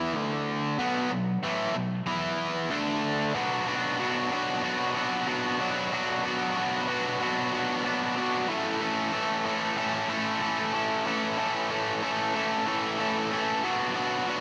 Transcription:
Already playing: E3 B3 E4
0.15 D3 A3 D4
0.79 B2 F#3 B3
1.11 B2 F#3
1.43 A2 E3 A3
1.74 B2 F#3
2.06 E3 B3 E4
2.70 D3 A3 D4
3.34 B2 F#3 B3 D4 F#4
3.66 B2 F#3 B3 D4 F#4
3.99 B2 F#3 B3 D4 F#4
4.31 B2 F#3 B3 D4 F#4
4.62 B2 F#3 B3 D4 F#4
4.95 B2 F#3 B3 D4 F#4
5.27 B2 F#3 B3 D4 F#4
5.59 B2 F#3 B3 D4 F#4
5.92 B2 F#3 B3 D4 F#4
6.24 B2 F#3 B3 D4 F#4
6.56 B2 F#3 B3 D4 F#4
6.88 B2 F#3 B3 D4 F#4
7.20 B2 F#3 B3 D4 F#4
7.52 B2 F#3 B3 D4 F#4
7.84 B2 F#3 B3 D4 F#4
8.16 B2 F#3 B3 D4 F#4
8.48 A2 E3 A3 C#4 A4
8.80 A2 E3 A3 C#4 A4
9.13 A2 E3 A3 C#4 A4
9.45 A2 E3 A3 C#4 A4
9.77 A2 E3 A3 C#4 A4
10.09 A2 E3 A3 C#4 A4
10.41 A2 E3 A3 C#4 A4
10.73 A2 E3 A3 C#4 A4
11.05 A2 E3 A3 C#4 A4
11.37 A2 E3 A3 C#4 A4
11.69 A2 E3 A3 C#4 A4
12.02 A2 E3 A3 C#4 A4
12.34 A2 E3 A3 C#4 A4
12.67 A2 E3 A3 C#4 A4
12.99 A2 E3 A3 C#4 A4
13.31 A2 E3 A3 C#4 A4
13.63 B2 F#3 B3 D4 F#4
13.95 B2 F#3 B3 D4 F#4
14.28 B2 F#3 B3 D4 F#4

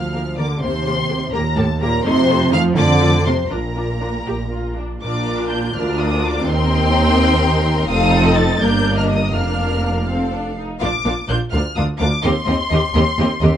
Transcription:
Already playing: D2 F3 F5 F6
0.14 A#3 A#4
0.37 D3 A#3 A#4 D5 D6
0.61 D#2 C3 A#3 G4 C5 C6
0.86 A#3 G4
1.11 A#3 G4
1.33 D#2 A#2 A#3 G4 A#4 A#5
1.56 A2 A#3 G4 A4 A5
1.80 A#2 A#3 G4 A#4 A#5
2.05 F2 C3 A3 D#4 C5 C6
2.28 A3 D#4
2.52 F3 A3 D#4 F5 F6
2.76 F2 D3 A3 F4 D5 D6
3.01 A3 F4
3.25 C3 A3 F4 C5 C6
3.50 A#1 A#2 D4 F4 A#4 A#5
3.76 D4 F4
4.00 D4 F4
4.26 A#1 G4
4.51 F4
4.76 D4
5.01 A#1 A#2 D4 F4 A#4 D5 D6
5.51 G6
5.74 D2 D4 F4 A#4 D5 F6
5.99 D#6
6.24 D6
6.46 D#2 C4 D#4 A#4 G5 C6
7.88 F1 F2 C4 D#4 A4 F5 D#6
8.25 D#5
8.37 A6
8.60 G1 G2 A#3 D4 A#4 D5 G6
8.97 D#5 F6
9.09 D#6
9.33 F1 F2 A#3 D4 A#4 F5 F6
10.05 C4 A4 F5
10.32 D4
10.57 D#4
10.80 A#1 A#2 D4 F4 A#4 F5 D6
11.04 A#1 A#2 D4 F4 A#4 F5
11.28 A#1 A#2 D4 F4 A#4 F5 G6
11.51 D2 D4 F4 A#4 F5 F6
11.76 D2 D4 F4 A#4 F5 D#6
11.97 D2 D4 F4 A#4 F5 D6
12.22 D#2 C4 G4 A#4 D#5 C6
12.45 D#2 C4 G4 A#4 D#5
12.70 D#2 C4 G4 A#4 D#5
12.94 D#2 C4 G4 A#4 D#5
13.17 D#2 C4 G4 A#4 D#5
13.41 D#2 C4 G4 A#4 D#5

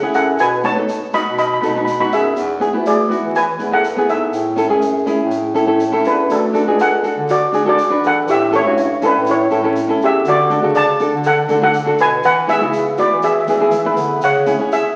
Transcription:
Already playing: A4 F#5
0.02 C#4 E4 G#4
0.14 F#2 A4 F#5, shaker
0.39 B2 B4 G#5, shaker
0.63 B3 D#4 F#4 C#5 A5, shaker
0.76 B3 D#4 A4
0.89 shaker
1.13 B3 D#4 F#4 D#5 B5, shaker
1.25 B2
1.38 D#5 B5, shaker
1.47 B5
1.54 B5
1.61 B2 B3 D#4 A4 B5, shaker
1.69 B5
1.75 B3 D#4 F#4 B5
1.85 B5, shaker
1.92 B5
1.99 B3 D#4 F#4 B5
2.11 F#2 G#4 E5, shaker
2.36 E2, shaker
2.59 B3 E4 G#4, shaker
2.73 D2 B3 E4 B4
2.86 G#4 D5, shaker
3.09 B3 E4 F#4, shaker
3.22 E3
3.36 B4 G#5, shaker
3.58 E2 B3 E4 B4, shaker
3.71 B3 E4 G#4 A4 F#5
3.84 shaker
3.96 B3 E4 G#4
4.08 G#2 A4 E5, shaker
4.33 A2, shaker
4.56 C#4 E4 A4, shaker
4.69 F#2 C#4 E4 G#4
4.82 shaker
5.06 C#4 E4 G#4, shaker
5.19 A2
5.31 shaker
5.54 A2 C#4 E4 A4, shaker
5.66 C#4 E4 A4
5.80 shaker
5.92 C#4 E4 A4
6.05 E2 D4 B4, shaker
6.29 D2 D4 A4, shaker
6.53 D4 F#4 A4, shaker
6.66 C#2 D4 F#4 G#4
6.79 A4 F#5, shaker
7.03 D4 F#4 A4, shaker
7.16 D3
7.29 F#4 D5, shaker
7.52 D4 F#4 G#4, shaker
7.65 D4 F#4 A4
7.69 D5
7.79 shaker
7.90 D4 F#4 B4
8.02 E3 A4, shaker
8.07 F#5
8.27 A2 G4 E5, shaker
8.51 C#4 E4 A4, shaker
8.55 E4 C#5
8.64 G2 C#4 E4 F#4
8.78 shaker
9.01 C#4 D4 E4 A4, shaker
9.06 B4
9.14 A2
9.26 E4, shaker
9.31 C#5
9.50 A2 C#4 E4 A4, shaker
9.63 C#4 E4 A4
9.76 shaker
9.88 C#4 E4 A4
10.00 E2 G4, shaker
10.05 E5
10.25 D3 F#4 D5, shaker
10.49 D4 F#4 A4, shaker
10.62 C#3 D4 F#4 A4
10.75 D5 A5, shaker
11.00 D4 F#4 A4, shaker
11.11 D3
11.24 A4 F#5, shaker
11.48 D3 D4 F#4 A4, shaker
11.61 D4 F#4 A4 F#5
11.74 shaker
11.86 D4 F#4 A4
11.98 B2 B4 G#5, shaker
12.23 E3 B4 F#5, shaker
12.47 B3 E4 G#4 E5, shaker
12.61 C#3 B3 E4 F#4
12.73 shaker
12.98 B3 E4 F#4 B4 D5, shaker
13.11 E3
13.23 G#4 E5, shaker
13.32 E5
13.40 E5
13.47 E3 B3 E4 G#4 E5, shaker
13.55 E5
13.59 B3 E4 G#4 E5
13.71 E3 E5, shaker
13.79 E5
13.85 B3 E4 B4 E5
13.97 D3, shaker
14.21 C#3 C#5 F#5, shaker
14.46 C#4 E4 G#4, shaker
14.59 C#4 E4 G#4
14.72 G#4 E5, shaker

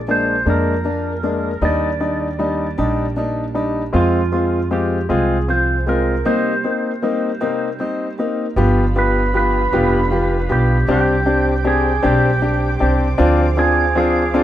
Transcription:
Already playing: A#1 D5
0.07 F3 G#3 A#3 D4 F4 G#4
0.11 C5
0.46 F2 A#2 D3 F3 G#3 A#3 D4 F4 G#4
0.50 A#4
0.84 F3 A#3 D4 F4 G#4
1.23 F3 G#3 A#3 D4 F4 G#4
1.61 D#2 D#3 G3 A#3 D4 D#4 G4 D5
2.00 G3 A#3 D4 D#4 G4
2.39 G3 A#3 D4 D#4 G4
2.78 A#1 D#3 G3 A#3 D4 D#4 G4
3.16 G3 A#3 D4 D#4 G4
3.54 G3 A#3 D4 D#4 G4
3.93 F2 F3 G#3 C4 F4 G#4
4.32 G#3 C4 F4 G#4
4.71 F3 G#3 C4 F4 G4
5.09 C2 F3 G#3 C4 F4 G#4
5.48 F3 C4 F4 G#4 C5
5.86 G#3 C4 F4 G#4 A#4
6.25 C3 G3 A#3 C4 D#4 G4 C5
6.64 A#3 C4 D#4 G4
7.02 G3 A#3 C4 D#4 G4
7.41 C3 G3 A#3 C4 D#4 G4
7.79 G3 A#3 C4 D#4 G4
8.18 A#3 C4 D#4 G4
8.56 G1 G2 D3 F3 B3 D4 F4 G4 F5 B5
8.95 F3 B3 D4 F4 G4 B4
9.33 F3 B3 D4 F4 G4 B4
9.72 F1 G2 D3 F3 B3 D4 F4 G4
10.10 F3 B3 D4 F4 G4
10.49 B1 F3 B3 D4 F4 G4
10.87 C2 C3 G3 C4 D4 G4 C5 G5 D6
10.91 G4
11.25 C4 D4 G4
11.64 C4 D4 G4 G#4
12.03 B1 G3 C4 D4 G4
12.41 G3 C4 D4 G4
12.79 C2 C4 D4 G4
13.18 D2 D3 F3 C4 D4 F4 G#4 F5
13.56 C4 D4 F4 G#4
13.95 F3 C4 D4 F4 G#4
14.34 C2 D3 F3 C4 D4 F4 G#4

